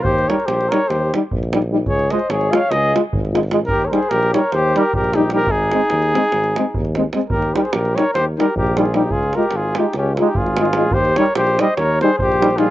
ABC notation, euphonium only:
X:1
M:9/8
L:1/8
Q:3/8=99
K:Ebmix
V:1 name="Euphonium"
z E z E z E z E E | z F z F z F z F F | z E z E z E z E E | z C z C z C z C C |
z E z E z E z E E | z F z F z F z F F | z E z E z E z E E |]